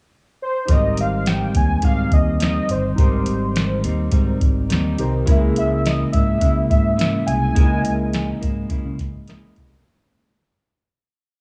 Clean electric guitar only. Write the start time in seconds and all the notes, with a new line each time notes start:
0.69 G#2 D#3 G3 C4 D#4
1.82 D#3 G3 C4 D#4
2.40 D#3 G3 C4 D#4
2.99 G#2 D#3 G3 C4 D#4
3.84 G3 C4 D#4
4.11 D#3 G3 C4 D#4
4.69 D#3 G3 C4 D#4
5.26 C#3 G#3 A#3 E4
6.13 G#3 A#3 E4
6.40 C#3 G#3 A#3 E4
6.97 C#3 G#3 A#3 E4
7.55 C#3 G#3 A#3 E4
8.41 G#3 A#3 E4
8.69 C#3 G#3 A#3 E4
9.28 C#3 G#3 A#3 E4